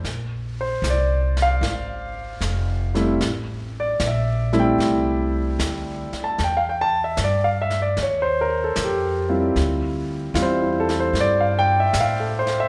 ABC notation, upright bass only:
X:1
M:4/4
L:1/8
Q:"Swing" 1/4=76
K:Bblyd
V:1 name="Upright bass" clef=bass
B,,,2 C,,2 _A,,,2 F,,,2 | A,,,2 B,,,2 C,,2 D,, z | E,,2 G,,2 _E,,2 F,,2 | D,,2 E,,2 G,,2 A,,2 |]